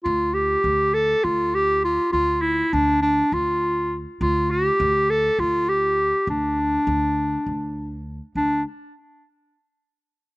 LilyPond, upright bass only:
\new Staff \with { instrumentName = "Upright bass" } { \clef bass \time 7/8 \tempo 4 = 101 d,4 d,4 d,4. | d,4 d,4 d,4. | d,4 d,4 d,4. | d,4 d,4 d,4. |
d,8 r2. | }